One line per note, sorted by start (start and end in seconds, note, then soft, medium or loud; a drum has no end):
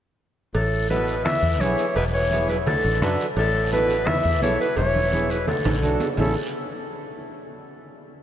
0.55 1.25 A1 medium
0.55 0.87 A2 medium
0.55 0.88 A4 medium
0.55 cowbell loud
0.55 high conga soft
0.55 long guiro medium
0.90 1.23 B2 medium
0.90 1.15 B3 medium
0.90 1.15 E4 medium
0.90 1.15 A4 medium
0.90 1.23 B4 medium
0.90 high conga medium
0.90 short guiro medium
1.07 short guiro medium
1.24 1.39 E2 loud
1.24 1.62 E3 medium
1.24 1.62 E5 loud
1.24 cowbell medium
1.24 high conga soft
1.24 low conga medium
1.24 long guiro medium
1.43 1.61 E2 medium
1.60 1.75 B1 medium
1.60 1.96 E3 medium
1.60 1.85 B3 medium
1.60 1.86 E4 medium
1.60 1.86 G#4 medium
1.60 1.96 C#5 loud
1.60 high conga medium
1.60 short guiro medium
1.78 short guiro medium
1.96 2.67 E1 medium
1.96 2.05 B2 medium
1.96 2.04 B4 loud
1.96 cowbell loud
1.96 high conga soft
1.96 long guiro medium
2.14 2.47 E3 medium
2.14 2.46 C#5 loud
2.31 2.56 B3 medium
2.31 2.56 E4 medium
2.31 2.56 G#4 medium
2.31 high conga medium
2.31 short guiro medium
2.48 2.58 B2 medium
2.48 2.57 B4 medium
2.48 high conga medium
2.48 short guiro medium
2.66 2.81 D2 loud
2.66 3.00 D3 medium
2.66 2.99 A4 medium
2.66 cowbell medium
2.66 high conga soft
2.66 low conga medium
2.66 long guiro medium
2.85 3.02 A1 medium
3.02 3.16 F#2 medium
3.02 3.27 D3 medium
3.02 3.26 D4 medium
3.02 3.26 F#4 medium
3.02 3.27 A4 medium
3.02 3.27 B4 medium
3.02 high conga medium
3.02 low conga medium
3.02 short guiro medium
3.20 short guiro medium
3.37 4.06 A1 medium
3.37 3.70 A2 medium
3.37 3.70 A4 medium
3.37 cowbell loud
3.37 high conga soft
3.37 long guiro medium
3.71 4.09 B2 medium
3.71 3.96 B3 medium
3.71 3.96 E4 medium
3.71 3.97 A4 medium
3.71 4.08 B4 medium
3.71 high conga medium
3.71 short guiro medium
3.90 short guiro medium
4.06 4.21 E2 medium
4.06 4.42 E3 medium
4.06 4.42 E5 loud
4.06 cowbell medium
4.06 high conga soft
4.06 low conga medium
4.06 long guiro medium
4.25 4.42 E2 medium
4.41 4.56 B1 medium
4.41 4.59 E3 medium
4.41 4.66 B3 medium
4.41 4.67 E4 medium
4.41 4.67 A4 medium
4.41 4.59 C#5 medium
4.41 high conga medium
4.41 low timbale medium
4.41 short guiro medium
4.60 4.76 B2 medium
4.60 4.76 B4 medium
4.60 short guiro medium
4.76 5.48 E1 medium
4.76 5.32 E3 medium
4.76 5.32 C#5 loud
4.76 cowbell loud
4.76 high conga medium
4.76 long guiro medium
4.95 high conga medium
5.12 5.37 B3 medium
5.12 5.37 E4 medium
5.12 5.37 G#4 medium
5.12 high conga medium
5.12 short guiro medium
5.30 5.47 B2 medium
5.30 5.48 B4 medium
5.30 short guiro medium
5.47 5.62 D2 medium
5.47 5.97 D3 medium
5.47 5.97 A4 medium
5.47 cowbell medium
5.47 low conga loud
5.47 long guiro medium
5.65 5.83 A1 medium
5.65 low conga loud
5.65 high timbale loud
5.82 5.97 B1 medium
5.82 6.07 D4 medium
5.82 6.07 F#4 medium
5.82 6.08 A4 medium
5.82 low conga medium
5.82 short guiro medium
6.00 low conga medium
6.00 low timbale medium
6.00 short guiro medium
6.17 6.34 A1 medium
6.17 6.34 C#3 medium
6.17 6.35 C#4 medium
6.17 6.35 E4 medium
6.17 6.34 A4 medium
6.17 6.35 A4 medium
6.17 low conga medium
6.17 low timbale loud
6.17 long guiro medium